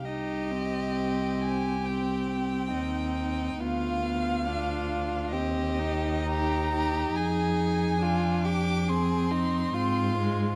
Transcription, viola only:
\new Staff \with { instrumentName = "Viola" } { \time 4/4 \key c \minor \tempo 4 = 69 ees'8 c'4. c'2 | b8 b8 d'4 c'8 ees'4.~ | ees'4 d'4 c'4 c'8 aes8 | }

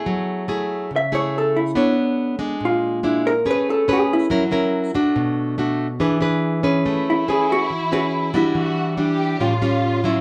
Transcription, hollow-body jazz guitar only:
\new Staff \with { instrumentName = "Hollow-body jazz guitar" } { \time 4/4 \key a \major \tempo 4 = 141 r2 e''8 cis''8 a'8 e'8~ | e'8 r4. f'4. bes'8 | b'8 a'8 gis'8 e'2~ e'8 | r1 |
r8 e'8 gis'8 fis'4 fis'4 e'8~ | e'4. r2 r8 | }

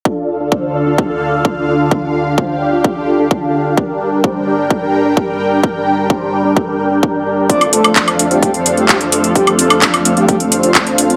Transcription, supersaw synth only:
\new Staff \with { instrumentName = "Supersaw synth" } { \time 4/4 \key d \minor \tempo 4 = 129 <d' f' a'>8. <d' f' a'>16 <d' f'>8 <d' f' d''>16 <d' f' d''>16 g'16 <d' f' a'>8 <d' f' a'>16 a'8 <d' f' a'>8 | <d' f'>8. <d' f' a'>16 <d' f' c''>8 <d' f' d''>16 <d' f' d''>16 <d' g'>16 <d' f' a'>8 <d' f' a'>16 r8 <d' f' a'>8 | <d' bes'>8. <d' g' bes'>16 <d' g' c''>8 <d' g' d''>16 <d' g' d''>16 <g' a'>16 <d' g' bes'>8 <d' g' bes'>16 <d' g' bes'>8 <d' g' bes'>8 | <g' bes'>8. <d' g' bes'>16 <d' g'>8 <d' g' d''>16 <d' g' d''>16 <d' g' a'>16 <d' g' bes'>8 <d' g' bes'>16 <d' g' bes'>8 <d' g' bes'>8 |
<a c' d' f' c''>8. <a c' d' f' c''>16 <a c' d' f' d''>8 <a c' d' f' f''>16 <a c' d' f' f''>16 <a c' d' a'>16 <a c' d' f' c''>8 <a c' d' f' c''>16 d'8 <a c' d' f' c''>8 | <a c' d' f' c''>8. <a c' d' f' c''>16 <a c' d' f' d''>8 <a c' d' f' f''>16 <a c' d' f' f''>16 c'16 <a c' d' f' c''>8 <a c' d' f' c''>16 r8 <a c' d' f' c''>8 | }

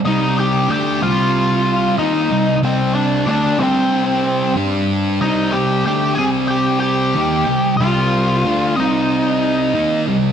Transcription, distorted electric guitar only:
\new Staff \with { instrumentName = "Distorted electric guitar" } { \clef bass \time 4/4 \key c \minor \tempo 4 = 93 <c g c'>4 <d a d'>8 <c g c'>4. <ees bes ees'>8 <c g>8 | <c g c'>4 <d a d'>8 <c g c'>4. <g d' g'>4 | <c g c'>4 <d a d'>8 <c g c'>4. <ees bes ees'>8 <c g>8 | <c g c'>4 <d a d'>8 <c g c'>4. <ees bes ees'>8 <c g>8 | }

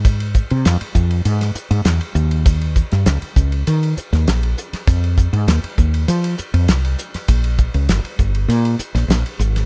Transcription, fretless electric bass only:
\new Staff \with { instrumentName = "Fretless electric bass" } { \clef bass \time 4/4 \key bes \dorian \tempo 4 = 100 aes,8. c16 f,16 r16 f,8 aes,8 r16 aes,16 e,16 r16 ees,8~ | ees,8. g,16 des,16 r16 des,8 ees8 r16 ees,16 bes,,8 r8 | f,8. aes,16 ees,16 r16 ees,8 f8 r16 f,16 c,8 r8 | bes,,8. des,16 g,,16 r16 g,,8 bes,8 r16 bes,,16 bes,,16 r16 aes,,8 | }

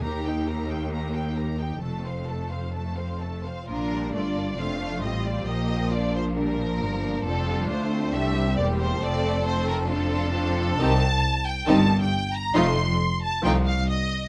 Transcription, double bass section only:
\new Staff \with { instrumentName = "Double bass section" } { \clef bass \time 4/4 \key f \mixolydian \tempo 4 = 135 ees,1 | f,,2.~ f,,8 r8 | bes,,4 g,,4 f,,4 a,,4 | bes,,2. g,,4 |
f,,4 d,4 c,4 e,,4 | f,,1 | \key c \dorian c,4 r4 g,,4 r4 | f,,4 r4 c,4 r4 | }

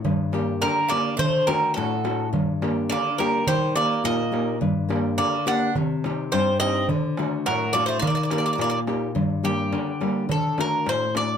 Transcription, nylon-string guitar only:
\new Staff \with { instrumentName = "Nylon-string guitar" } { \time 2/4 \tempo 4 = 105 g,8 <bes d' g'>8 d8 <bes d' g'>8 | d8 <a d' fis'>8 a,8 <a d' fis'>8 | g,8 <bes d' g'>8 d8 <bes d' g'>8 | ees8 <bes ees' g'>8 bes,8 <bes ees' g'>8 |
g,8 <bes d' g'>8 d8 <bes d' g'>8 | c8 <c' ees' g'>8 g,8 <c' ees' g'>8 | d8 <a d' fis'>8 a,8 <a d' fis'>8 | ees8 <bes ees' g'>8 bes,8 <bes ees' g'>8 |
g,8 <g bes d'>8 d8 <g bes d'>8 | d8 <a d' fis'>8 a,8 <a d' fis'>8 | }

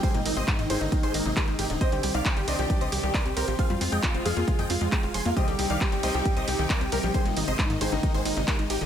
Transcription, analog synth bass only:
\new Staff \with { instrumentName = "Analog synth bass" } { \clef bass \time 4/4 \key c \minor \tempo 4 = 135 r16 aes,,16 aes,,16 aes,,16 r16 aes,16 aes,,16 aes,,16 r16 aes,,16 aes,,16 aes,,16 r16 aes,,16 aes,,16 ees,,16 | r16 c,16 c,16 c,16 r16 g,,16 c,16 c,16 r16 c,16 c,16 c,16 r16 c,16 c,16 bes,,16 | r16 f,16 f,16 f,16 r16 f,,16 f,16 f,16 r16 f,16 f,16 f,16 r16 f,,16 f,,16 f,16 | r16 c,16 c,16 c,16 r16 g,,16 c,16 c,16 r16 c,16 c,16 c,16 r16 c,16 c,16 bes,,16 |
r16 aes,,16 aes,,16 aes,,16 r16 aes,16 aes,,16 aes,,16 r16 aes,,16 aes,,16 aes,,16 r16 aes,,16 aes,,16 ees,,16 | }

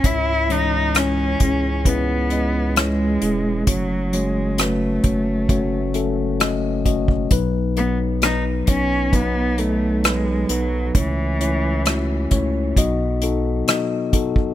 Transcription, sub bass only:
\new Staff \with { instrumentName = "Sub bass" } { \clef bass \time 4/4 \key b \mixolydian \tempo 4 = 66 cis,4. cis,2 e,,8 | fis,,4. fis,,2~ fis,,8 | b,,4. b,,2 b,,8 | cis,4. cis,8 b,,4 r4 | }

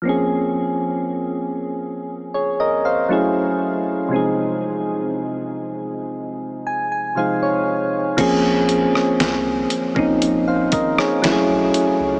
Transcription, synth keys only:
\new Staff \with { instrumentName = "Synth keys" } { \time 4/4 \key bes \minor \tempo 4 = 59 << { r2 r16 <aes' des''>16 <bes' ees''>16 <c'' f''>8 r8. | r2 r8 aes''16 aes''16 f''16 des''8. | r2 r16 <c'' f''>16 <bes' ees''>16 <aes' des''>8 r8. | } \\ { <f bes c' des' aes'>2. <ges a des' fes' aes'>4 | <c f aes c' ees' aes'>2. <c f aes ees' aes' c''>4 | <f bes c' des' aes'>4. r16 <f bes c' des' ees'>4~ <f bes c' des' ees'>16 <ges a des' fes' ges' aes'>8. r16 | } >> }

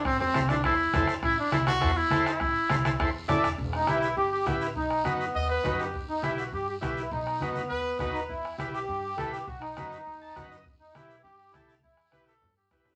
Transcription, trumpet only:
\new Staff \with { instrumentName = "Trumpet" } { \time 4/4 \key a \dorian \tempo 4 = 204 c'8 c'4 d'8 e'4. r8 | e'8 d'8 e'8 fis'4 e'4 e'8~ | e'2~ e'8 r4. | \key e \minor r1 |
r2 dis''8 b'4 g'8~ | g'16 r2. r8. | r2 b'4 b'4~ | b'16 r2. r8. |
r1 | r1 | r4 b'8 a'4 g'8 b'4 | }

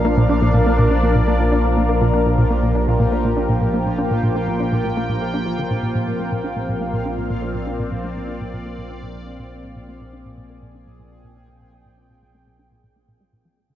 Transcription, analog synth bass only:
\new Staff \with { instrumentName = "Analog synth bass" } { \clef bass \time 4/4 \key bes \mixolydian \tempo 4 = 122 bes16 bes,16 d'16 bes,16 bes,16 bes16 bes,16 d'16 bes,16 bes,16 bes16 bes,16 d'16 bes,16 bes,16 bes16 | bes,16 d'16 bes,16 bes,16 bes16 bes,16 d'16 bes,16 bes,16 bes16 bes,16 d'16 bes,16 bes,16 bes16 bes,16 | d'16 bes,16 bes,16 bes16 bes,16 d'16 bes,16 bes,16 bes16 bes,16 bes16 d'16 f16 d16 bes,16 bes,16 | bes,16 bes,16 bes16 bes,16 d'16 bes,16 bes,16 bes16 bes,16 d'16 bes,16 bes,16 bes16 bes,16 d'16 bes,16 |
bes,16 bes16 bes,16 d'16 bes,16 bes,16 bes16 bes,16 d'16 bes,16 bes,16 bes16 bes,16 d'16 bes,16 bes,16 | bes16 bes,16 d'16 bes,16 bes,16 bes16 bes,16 d'16 bes,16 bes,16 bes16 bes,16 d'16 bes,16 bes,16 bes16 | bes,16 d'16 bes,16 bes,16 bes16 bes,16 d'16 bes,16 bes,16 bes16 bes,16 aes16 bes,16 f16 r16 d16 | }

